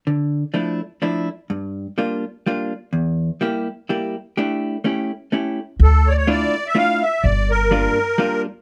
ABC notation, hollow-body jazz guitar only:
X:1
M:3/4
L:1/8
Q:"Swing" 1/4=125
K:Dm
V:1 name="Hollow-body jazz guitar"
D,2 [F,A,DE] z [F,A,DE] z | G,,2 [G,B,DF] z [G,B,DF] z | E,,2 [G,B,EG] z [G,B,EG] z | [A,DEG]2 [A,^CEG] z [A,CEG] z |
z2 [A,DEF] z [A,DEF] z | z2 [G,B,DF] z [G,B,DF] z |]